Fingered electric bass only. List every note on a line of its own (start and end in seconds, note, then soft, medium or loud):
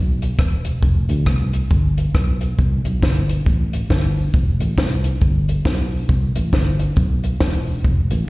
0.00 0.32 B1 medium
0.39 0.76 E1 medium
0.83 1.05 F1 loud
1.09 1.24 D2 medium
1.26 1.64 C2 medium
1.71 2.08 G1 loud
2.15 2.52 B1 medium
2.59 2.81 C2 loud
2.85 3.00 B1 medium
3.02 3.40 G1 medium
3.46 3.84 A1 medium
3.90 4.27 G1 loud
4.34 4.57 F1 loud
4.60 4.75 A1 medium
4.78 5.15 C2 medium
5.21 5.59 G1 loud
5.65 6.03 B1 medium
6.09 6.32 C2 loud
6.36 6.50 A1 medium
6.53 6.90 G1 medium
6.97 7.34 B1 loud
7.41 7.78 E1 loud
7.85 8.07 F1 loud
8.12 8.26 A1 loud